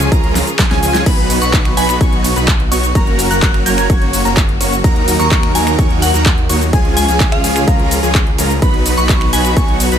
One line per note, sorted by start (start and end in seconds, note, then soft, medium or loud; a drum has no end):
0.00 1.04 C#3 medium
0.00 1.04 C#4 medium
0.00 1.04 F4 medium
0.00 1.04 G#4 medium
0.00 finger snap medium
0.00 closed hi-hat medium
0.00 shaker soft
0.12 0.42 C#2 loud
0.12 0.44 F3 medium
0.12 0.44 G#3 medium
0.12 0.44 C#4 medium
0.12 0.44 F4 medium
0.12 0.44 A#4 medium
0.12 0.44 A#5 medium
0.12 kick loud
0.12 closed hi-hat medium
0.12 shaker soft
0.24 closed hi-hat soft
0.35 snare medium
0.35 open hi-hat loud
0.35 shaker medium
0.47 closed hi-hat medium
0.47 shaker soft
0.59 kick loud
0.59 snare medium
0.59 clap loud
0.59 closed hi-hat medium
0.59 shaker soft
0.71 0.80 C#2 loud
0.71 0.81 F3 medium
0.71 0.81 G#3 medium
0.71 0.81 C#4 medium
0.71 0.81 F4 medium
0.71 0.81 G#4 medium
0.71 0.81 G#5 medium
0.71 snare medium
0.71 closed hi-hat soft
0.83 1.04 C#2 loud
0.83 1.03 F3 medium
0.83 1.03 G#3 medium
0.83 1.03 C#4 medium
0.83 1.03 F4 medium
0.83 1.03 G#4 medium
0.83 1.03 G#5 medium
0.83 open hi-hat loud
0.83 shaker medium
0.94 snare medium
0.94 closed hi-hat medium
0.94 shaker soft
1.06 1.39 B1 loud
1.06 1.39 F#3 loud
1.06 2.93 B3 medium
1.06 1.39 B3 loud
1.06 1.39 D#4 medium
1.06 2.93 D#4 medium
1.06 1.39 F#4 medium
1.06 6.69 F#4 medium
1.06 1.39 B4 loud
1.06 1.39 B5 loud
1.06 kick loud
1.06 closed hi-hat medium
1.06 crash medium
1.06 shaker soft
1.18 closed hi-hat soft
1.30 open hi-hat loud
1.30 ride medium
1.30 shaker medium
1.42 1.75 B1 loud
1.42 1.74 F#3 medium
1.42 1.74 B3 medium
1.42 1.74 D#4 medium
1.42 1.74 F#4 medium
1.42 1.74 B4 medium
1.42 1.74 B5 medium
1.42 1.55 C#6 medium
1.42 closed hi-hat medium
1.42 shaker soft
1.53 kick loud
1.53 clap loud
1.53 closed hi-hat medium
1.53 shaker soft
1.65 finger snap medium
1.65 closed hi-hat soft
1.77 1.98 B1 loud
1.77 1.98 F#3 medium
1.77 1.98 B3 medium
1.77 1.98 D#4 medium
1.77 1.98 F#4 medium
1.77 1.98 B4 loud
1.77 1.90 G#5 medium
1.77 1.98 B5 loud
1.77 open hi-hat loud
1.77 ride medium
1.77 shaker medium
1.89 finger snap medium
1.89 closed hi-hat medium
1.89 shaker soft
2.01 2.34 B1 loud
2.01 2.33 F#3 medium
2.01 2.33 D#4 medium
2.01 2.33 F#4 medium
2.01 2.33 C#5 medium
2.01 2.33 C#6 medium
2.01 kick loud
2.01 closed hi-hat medium
2.01 shaker soft
2.13 closed hi-hat soft
2.24 open hi-hat loud
2.24 ride medium
2.24 shaker medium
2.36 2.69 B1 loud
2.36 2.49 F#3 medium
2.36 2.49 B3 medium
2.36 2.49 D#4 medium
2.36 2.49 F#4 medium
2.36 2.49 B4 medium
2.36 2.49 B5 medium
2.36 closed hi-hat medium
2.36 shaker soft
2.48 kick loud
2.48 clap loud
2.48 closed hi-hat medium
2.48 shaker soft
2.60 closed hi-hat soft
2.71 2.93 B1 loud
2.71 2.84 F#3 medium
2.71 2.84 B3 medium
2.71 2.84 D#4 medium
2.71 2.84 F#4 medium
2.71 2.84 C#5 medium
2.71 2.84 C#6 medium
2.71 2.85 C#6 medium
2.71 open hi-hat loud
2.71 ride medium
2.71 shaker medium
2.83 closed hi-hat medium
2.83 shaker soft
2.95 3.28 F#1 loud
2.95 3.28 F#3 loud
2.95 3.28 A#3 medium
2.95 4.82 A#3 medium
2.95 3.28 C#4 medium
2.95 4.82 C#4 medium
2.95 3.28 F#4 medium
2.95 3.28 A#4 loud
2.95 3.28 A#5 loud
2.95 kick loud
2.95 closed hi-hat medium
2.95 shaker soft
3.07 closed hi-hat soft
3.19 open hi-hat loud
3.19 ride medium
3.19 shaker medium
3.31 3.64 F#1 loud
3.31 3.63 F#3 medium
3.31 3.63 A#3 medium
3.31 3.63 C#4 medium
3.31 3.63 F#4 medium
3.31 3.63 A#4 medium
3.31 3.63 A#5 medium
3.31 3.44 F#6 medium
3.31 closed hi-hat medium
3.31 shaker soft
3.42 kick loud
3.42 clap loud
3.42 closed hi-hat medium
3.42 shaker soft
3.54 finger snap medium
3.54 closed hi-hat soft
3.66 3.87 F#1 loud
3.66 3.87 F#3 medium
3.66 3.87 A#3 medium
3.66 3.87 C#4 medium
3.66 3.87 F#4 medium
3.66 3.87 A#4 loud
3.66 3.87 A#5 loud
3.66 4.01 G#6 medium
3.66 open hi-hat loud
3.66 ride medium
3.66 shaker medium
3.78 finger snap medium
3.78 closed hi-hat medium
3.78 shaker soft
3.90 4.23 F#1 loud
3.90 4.22 F#3 medium
3.90 4.22 A#3 medium
3.90 4.22 C#4 medium
3.90 4.22 F#4 medium
3.90 4.22 C#5 medium
3.90 4.22 C#6 medium
3.90 kick loud
3.90 closed hi-hat medium
3.90 shaker soft
4.02 closed hi-hat soft
4.13 open hi-hat loud
4.13 ride medium
4.13 shaker medium
4.25 4.58 F#1 medium
4.25 4.38 F#3 medium
4.25 4.38 A#3 medium
4.25 4.38 C#4 medium
4.25 4.38 F#4 medium
4.25 4.38 A#4 medium
4.25 4.38 A#5 medium
4.25 closed hi-hat medium
4.25 shaker soft
4.37 kick loud
4.37 clap loud
4.37 closed hi-hat medium
4.37 shaker soft
4.49 closed hi-hat soft
4.61 4.82 F#1 medium
4.61 4.73 F#3 medium
4.61 4.73 A#3 medium
4.61 4.73 C#4 medium
4.61 4.73 F#4 medium
4.61 4.73 C#5 medium
4.61 4.73 C#6 medium
4.61 open hi-hat loud
4.61 ride medium
4.61 shaker medium
4.72 closed hi-hat medium
4.72 shaker soft
4.84 5.17 D#2 loud
4.84 6.71 D#3 medium
4.84 5.17 F#3 loud
4.84 5.17 A#3 loud
4.84 5.17 D#4 medium
4.84 6.71 D#4 medium
4.84 5.17 F#4 medium
4.84 5.17 A#4 loud
4.84 6.71 A#4 medium
4.84 5.17 A#5 loud
4.84 kick loud
4.84 closed hi-hat medium
4.84 shaker soft
4.96 closed hi-hat soft
5.08 open hi-hat loud
5.08 ride medium
5.08 shaker medium
5.19 5.53 D#2 loud
5.19 5.52 F#3 medium
5.19 5.52 A#3 medium
5.19 5.52 D#4 medium
5.19 5.52 F#4 medium
5.19 5.52 A#4 medium
5.19 5.52 A#5 medium
5.19 5.33 C#6 medium
5.19 closed hi-hat medium
5.19 shaker soft
5.31 kick loud
5.31 clap loud
5.31 closed hi-hat medium
5.31 shaker soft
5.43 finger snap medium
5.43 closed hi-hat soft
5.55 5.76 D#2 loud
5.55 5.76 F#3 medium
5.55 5.76 A#3 medium
5.55 5.76 D#4 medium
5.55 5.76 F#4 medium
5.55 5.76 A#4 loud
5.55 5.68 G#5 medium
5.55 5.76 A#5 loud
5.55 open hi-hat loud
5.55 ride medium
5.55 shaker medium
5.67 finger snap medium
5.67 closed hi-hat medium
5.67 shaker soft
5.79 6.12 D#2 loud
5.79 6.11 F#3 medium
5.79 6.11 A#3 medium
5.79 6.11 D#4 medium
5.79 6.11 F#4 medium
5.79 6.11 C#5 medium
5.79 6.11 C#6 medium
5.79 kick loud
5.79 closed hi-hat medium
5.79 shaker soft
5.90 closed hi-hat soft
6.02 6.15 F#5 loud
6.02 open hi-hat loud
6.02 ride medium
6.02 shaker medium
6.14 6.47 D#2 loud
6.14 6.27 F#3 medium
6.14 6.27 A#3 medium
6.14 6.27 D#4 medium
6.14 6.27 F#4 medium
6.14 6.27 A#4 medium
6.14 6.27 A#5 medium
6.14 closed hi-hat medium
6.14 shaker soft
6.26 kick loud
6.26 clap loud
6.26 closed hi-hat medium
6.26 shaker soft
6.38 closed hi-hat soft
6.49 6.71 D#2 loud
6.49 6.62 F#3 medium
6.49 6.62 A#3 medium
6.49 6.62 D#4 medium
6.49 6.62 F#4 medium
6.49 6.62 C#5 medium
6.49 6.62 C#6 medium
6.49 open hi-hat loud
6.49 ride medium
6.49 shaker medium
6.61 closed hi-hat medium
6.61 shaker soft
6.73 7.06 C#2 loud
6.73 8.60 C#3 medium
6.73 7.06 F3 loud
6.73 7.06 G#3 medium
6.73 7.06 C#4 loud
6.73 8.60 C#4 medium
6.73 7.06 F4 loud
6.73 8.60 F4 medium
6.73 7.06 G#4 loud
6.73 8.60 G#4 medium
6.73 7.06 G#5 loud
6.73 kick loud
6.73 closed hi-hat medium
6.73 shaker soft
6.85 closed hi-hat soft
6.97 7.10 G#5 medium
6.97 open hi-hat loud
6.97 ride medium
6.97 shaker medium
7.08 7.42 C#2 loud
7.08 7.41 F3 medium
7.08 7.41 G#3 medium
7.08 7.41 C#4 medium
7.08 7.41 F4 medium
7.08 7.41 G#4 medium
7.08 7.41 G#5 medium
7.08 closed hi-hat medium
7.08 shaker soft
7.20 kick loud
7.20 clap loud
7.20 closed hi-hat soft
7.20 shaker soft
7.32 7.98 F5 medium
7.32 finger snap medium
7.32 closed hi-hat soft
7.44 7.65 C#2 loud
7.44 7.65 F3 medium
7.44 7.65 G#3 medium
7.44 7.65 C#4 medium
7.44 7.65 F4 medium
7.44 7.65 G#4 loud
7.44 7.65 G#5 loud
7.44 open hi-hat loud
7.44 ride medium
7.44 shaker medium
7.56 finger snap medium
7.56 closed hi-hat medium
7.56 shaker soft
7.68 8.01 C#2 loud
7.68 8.00 G#3 medium
7.68 8.00 C#4 medium
7.68 8.00 F4 medium
7.68 8.00 A#5 medium
7.68 kick loud
7.68 closed hi-hat soft
7.68 shaker soft
7.79 closed hi-hat soft
7.91 open hi-hat loud
7.91 ride medium
7.91 shaker medium
8.03 8.36 C#2 medium
8.03 8.16 F3 medium
8.03 8.16 G#3 medium
8.03 8.16 C#4 medium
8.03 8.16 F4 medium
8.03 8.16 G#4 medium
8.03 8.16 G#5 medium
8.03 closed hi-hat medium
8.03 shaker soft
8.15 kick loud
8.15 clap loud
8.15 closed hi-hat medium
8.15 shaker soft
8.27 closed hi-hat soft
8.38 8.60 C#2 medium
8.38 8.51 F3 medium
8.38 8.51 G#3 medium
8.38 8.51 C#4 medium
8.38 8.51 F4 medium
8.38 8.51 A#4 medium
8.38 8.51 A#5 medium
8.38 open hi-hat loud
8.38 ride medium
8.38 shaker medium
8.50 closed hi-hat medium
8.50 shaker soft
8.62 8.95 B1 loud
8.62 8.95 F#3 loud
8.62 8.95 B3 medium
8.62 9.99 B3 medium
8.62 8.95 D#4 loud
8.62 9.99 D#4 medium
8.62 8.95 F#4 medium
8.62 9.99 F#4 medium
8.62 8.95 B4 loud
8.62 8.95 B5 loud
8.62 kick loud
8.62 closed hi-hat medium
8.62 shaker soft
8.74 closed hi-hat soft
8.86 open hi-hat loud
8.86 ride medium
8.86 shaker medium
8.97 9.31 B1 loud
8.97 9.30 F#3 medium
8.97 9.30 B3 medium
8.97 9.30 D#4 medium
8.97 9.30 F#4 medium
8.97 9.30 B4 medium
8.97 9.30 B5 medium
8.97 9.11 C#6 medium
8.97 closed hi-hat soft
8.97 shaker soft
9.09 kick loud
9.09 clap loud
9.09 closed hi-hat medium
9.09 shaker soft
9.21 finger snap medium
9.21 closed hi-hat soft
9.33 9.54 B1 loud
9.33 9.54 F#3 medium
9.33 9.54 B3 medium
9.33 9.54 D#4 medium
9.33 9.54 F#4 medium
9.33 9.54 B4 loud
9.33 9.46 G#5 medium
9.33 9.54 B5 loud
9.33 open hi-hat loud
9.33 ride medium
9.33 shaker medium
9.45 finger snap medium
9.45 closed hi-hat medium
9.45 shaker soft
9.56 9.90 B1 loud
9.56 9.89 F#3 medium
9.56 9.89 B3 medium
9.56 9.89 D#4 medium
9.56 9.89 F#4 medium
9.56 9.89 C#5 medium
9.56 9.89 C#6 medium
9.56 kick loud
9.56 closed hi-hat medium
9.56 shaker soft
9.68 closed hi-hat soft
9.80 open hi-hat loud
9.80 ride medium
9.80 shaker medium
9.92 9.99 B1 loud
9.92 9.99 F#3 medium
9.92 9.99 B3 medium
9.92 9.99 D#4 medium
9.92 9.99 F#4 medium
9.92 9.99 B4 medium
9.92 9.99 B5 medium
9.92 closed hi-hat medium
9.92 shaker soft